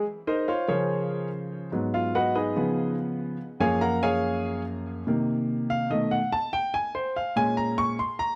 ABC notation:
X:1
M:4/4
L:1/8
Q:1/4=144
K:Db
V:1 name="Grand piano"
z [EBce] [Fcdf] [DABd]3 z2 | z [Ff] [G_ceg] [EAce]3 z2 | z [Adfa] [Bfgb] [Adfa]3 z2 | z3 f e g =a =g |
a c f a b d' c' b |]
V:2 name="Grand piano" clef=bass
z3 [D,F,c]4- [D,F,c] | [A,,G,_C]4 [D,F,C]4 | z [G,,F,B,]6- [G,,F,B,] | [C,E,B,]4 [_C,E,=A,] z3 |
z3 [B,,A,D]3 z2 |]